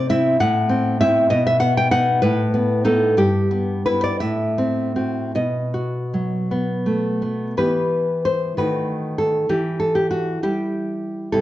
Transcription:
Already playing: C3
0.09 C4 E4 E5
0.40 A2 F#5
0.69 C4
1.01 C4 E4 E5
1.30 B2 D#5
1.47 E5
1.60 B3 F#5
1.77 G5
1.91 B3 D#4 F#5
2.22 A2 B4
2.54 B3
2.85 B3 D#4 A4
3.17 G2 G4
3.51 B3
3.86 B3 E4 B4
4.04 D5
4.20 A2 E5
4.58 C4
4.96 C4 F#4
5.35 B2 D#5
5.74 F#4
6.14 F#3
6.51 B3
6.86 A3
7.22 B3
7.57 E3 B3 G4 B4
8.25 C5
8.57 D#3 A3 F#4 B4
9.18 A4
9.49 E3 G4
9.80 A4
9.95 G4
10.11 F#4
10.43 G3 E4 G4
11.32 C3 G3 E4 A4

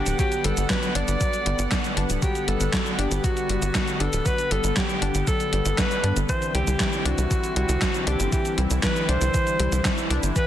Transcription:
Already playing: D3 G3 B3 D4 G4 F#5
0.06 D1, closed hi-hat, shaker
0.19 F#3 G4, kick, closed hi-hat, shaker
0.32 closed hi-hat, shaker
0.44 G1 G3 A4, closed hi-hat
0.57 G1, closed hi-hat, shaker
0.70 F#3 B4, kick, snare, clap, closed hi-hat, shaker
0.83 closed hi-hat, shaker
0.95 G1 D4 D5, closed hi-hat
1.08 G1, closed hi-hat, shaker
1.21 F#3, kick, closed hi-hat, shaker
1.33 closed hi-hat, shaker
1.46 G1 G3, closed hi-hat
1.59 G1, closed hi-hat, shaker
1.72 B3, kick, snare, clap, closed hi-hat, shaker
1.84 closed hi-hat, shaker
1.97 G1 D4, closed hi-hat
2.10 D1, closed hi-hat, shaker
2.22 F#3 G4, kick, closed hi-hat, shaker
2.35 closed hi-hat, shaker
2.48 G1 G3 A4, closed hi-hat
2.60 G1, closed hi-hat, shaker
2.73 F#3, kick, snare, clap, closed hi-hat, shaker
2.86 closed hi-hat, shaker
2.99 G1 D4 G4, closed hi-hat
3.11 G1, closed hi-hat, shaker
3.24 F#3 F#4, kick, closed hi-hat, shaker
3.37 closed hi-hat, shaker
3.49 G1 G3, closed hi-hat
3.62 G1, closed hi-hat, shaker
3.75 B3, kick, snare, clap, closed hi-hat, shaker
3.88 closed hi-hat, shaker
4.00 G1 D4 A4, closed hi-hat
4.13 D1, closed hi-hat, shaker
4.26 F#3 B4, kick, closed hi-hat, shaker
4.38 closed hi-hat, shaker
4.51 G1 G3 A4, closed hi-hat
4.64 G1, closed hi-hat, shaker
4.77 F#3 G4, kick, snare, clap, closed hi-hat, shaker
4.89 closed hi-hat, shaker
5.02 G1 D4, closed hi-hat
5.15 G1, closed hi-hat, shaker
5.27 F#3 A4, kick, closed hi-hat, shaker
5.40 closed hi-hat, shaker
5.53 G1 G3, closed hi-hat
5.65 G1, closed hi-hat, shaker
5.78 B3 B4, kick, snare, clap, closed hi-hat, shaker
5.91 closed hi-hat, shaker
6.04 G2 D4, closed hi-hat
6.16 G1, closed hi-hat, shaker
6.29 E3 C4 E4 C5, kick, closed hi-hat, shaker
6.42 closed hi-hat, shaker
6.55 C2 G3 G4, closed hi-hat
6.67 C2, closed hi-hat, shaker
6.80 E3, kick, snare, clap, closed hi-hat, shaker
6.93 closed hi-hat, shaker
7.05 C2 D4 F#4, closed hi-hat
7.18 C2, closed hi-hat, shaker
7.31 E3, kick, closed hi-hat, shaker
7.44 closed hi-hat, shaker
7.56 C2 G3 F#4, closed hi-hat
7.69 C2, closed hi-hat, shaker
7.82 C4, kick, snare, clap, closed hi-hat, shaker
7.94 closed hi-hat, shaker
8.07 C2 D4 G4, closed hi-hat
8.20 G1, closed hi-hat, shaker
8.32 E3 G4, kick, closed hi-hat, shaker
8.45 closed hi-hat, shaker
8.58 C2 G3, closed hi-hat
8.71 C2, closed hi-hat, shaker
8.83 E3 B4, kick, snare, clap, closed hi-hat, shaker
8.96 closed hi-hat, shaker
9.09 C2 D4 C5, closed hi-hat
9.21 C2, closed hi-hat, shaker
9.34 E3, kick, closed hi-hat, shaker
9.47 closed hi-hat, shaker
9.60 C2 G3, closed hi-hat
9.72 C2, closed hi-hat, shaker
9.85 C4, kick, snare, clap, closed hi-hat, shaker
9.98 closed hi-hat, shaker
10.10 C2 D4, closed hi-hat
10.23 G1, closed hi-hat, shaker
10.36 B2 E3 B4 F#5, kick, closed hi-hat, shaker

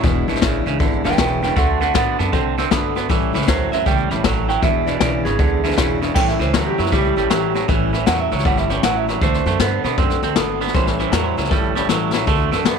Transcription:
0.03 E1 E2 B2 E3 G#3 D4 E4, kick, snare
0.28 G#1 E2 B2 E3 G#3 D4 E4, snare
0.35 snare
0.41 A1 E2 B2 C#3 E3 G#3 D4 E4, kick, snare, hi-hat pedal
0.66 C#2 E2 C#3 E3 G#3 D4 E4, snare
0.79 G#1 E2 D3 E3 G#3 D4 E4, kick, snare
1.04 E1 E2 D3 E3 G#3 D4 E4 B4 G5, snare
1.12 snare
1.17 E1 E2 B2 C#3 E3 G#3 D4 E4 B4 G5, kick, snare, hi-hat pedal
1.42 E2 C#3 E3 G#3 D4 E4 B4 G5, snare
1.56 D2 D3 A3 C4 F#4 A4 F#5, kick, snare
1.80 D3 A3 C4 F#4 A4 F#5, snare
1.94 A2 D3 A3 B3 C4 F#4 A4 F#5, kick, snare, hi-hat pedal
2.19 F#2 D3 A3 B3 C4 F#4 A5, snare
2.32 C2 D3 A3 C4 F#4, kick, snare
2.57 D3 A3 C4 F#4, snare
2.71 G1 D3 A3 B3 C4 F#4, kick, snare, hi-hat pedal
2.95 D3 A3 B3 C4 F#4, snare
3.09 A1 A2 E3 G3 C#4 E4, kick, snare
3.33 C#2 A2 E3 G3 C#4 E4, snare
3.41 snare
3.46 D2 A2 E3 F#3 G3 C#4 E4 C5, kick, snare, hi-hat pedal
3.71 F#2 A2 F#3 G3 C#4 E4 E5, snare
3.85 C#2 A2 E3 G3 C#4 E4 G5, kick, snare
4.10 A1 A2 G3 C#4 E4 A5, snare
4.24 A1 A2 E3 F#3 G3 C#4 E4, kick, snare, hi-hat pedal
4.48 A2 F#3 G3 C#4 E4 G5, snare
4.62 E1 E2 B2 E3 G#3 D4 E4 E5, kick, snare
4.86 E2 B2 E3 G#3 D4 E4 D5, snare
4.99 B1 E2 B2 C#3 E3 G#3 D4 E4 D5, kick, snare, hi-hat pedal
5.25 G#1 E2 C#3 E3 G#3 D4 E4 G#4, snare
5.39 D2 E2 D3 E3 G#3 D4 E4, kick, snare
5.64 E2 D3 E3 G#3 D4 E4, snare
5.71 snare
5.77 E1 E2 B2 C#3 E3 G#3 D4 E4, kick, snare, hi-hat pedal
6.02 E2 C#3 E3 G#3 D4 E4, snare
6.14 A1 A2 E3 G3 C#4 E4 G5, kick, snare, crash
6.28 E5, snare
6.39 C#2 A2 E3 G3 C#4 E4 C5, snare
6.53 D2 A2 E3 F#3 G3 C#4 E4 A4, snare, hi-hat pedal
6.66 G4
6.78 F#2 A2 F#3 G3 C#4 E4, snare
6.86 snare
6.91 C#2 A2 E3 G3 C#4 E4 G4, kick, snare
7.16 A1 A2 G3 C#4 E4, snare
7.30 A1 A2 E3 F#3 G3 C#4 E4, snare, hi-hat pedal
7.54 A2 F#3 G3 C#4 E4, snare
7.68 A1 A2 E3 G3 C#4 E4, kick, snare
7.93 A2 E3 G3 C#4 E4, snare
8.06 E2 A2 E3 F#3 G3 C#4 E4 F#5, snare, hi-hat pedal
8.20 E5
8.31 C#2 A2 F#3 G3 C#4 E4 C#5, snare
8.39 snare
8.45 G1 A2 E3 G3 C#4 E4 F#5, kick, snare
8.57 E5, snare
8.69 A2 G3 C#4 E4 C#5, snare
8.83 A1 A2 E3 F#3 G3 C#4 E4 F#5, snare, hi-hat pedal
8.97 E5
9.08 A2 F#3 G3 C#4 E4 D5, snare
9.21 D2 D3 A3 C4 F#4 C5, kick, snare
9.34 snare
9.45 F#2 D3 A3 C4 F#4, snare
9.59 G2 D3 A3 B3 C4 F#4, snare, hi-hat pedal
9.84 B2 D3 A3 B3 C4 F#4, snare
9.97 F#2 D3 A3 C4 F#4, kick, snare
10.10 snare
10.22 D2 D3 A3 C4 F#4, snare
10.36 G#1 D3 A3 B3 C4 F#4, snare, hi-hat pedal
10.61 D3 A3 B3 C4 F#4, snare
10.68 snare
10.74 A1 A2 E3 G3 C#4 E4 C5, kick, snare
10.86 A4, snare
10.99 A2 E3 G3 C#4 E4 C5, snare
11.12 E2 A2 E3 F#3 G3 C#4 E4 A4, snare, hi-hat pedal
11.24 C5
11.37 C#2 A2 F#3 G3 C#4 E4 A4, snare
11.44 snare
11.49 G1 A2 E3 G3 C#4 E4 A4, kick, snare
11.75 A2 G3 C#4 E4, snare
11.89 A1 A2 E3 F#3 G3 C#4 E4, snare, hi-hat pedal
12.13 A2 F#3 G3 C#4 E4, snare
12.27 D2 D3 A3 C4 F#4, kick, snare
12.51 F#2 D3 A3 C4 F#4, snare
12.65 G2 D3 A3 B3 C4 F#4, snare, hi-hat pedal

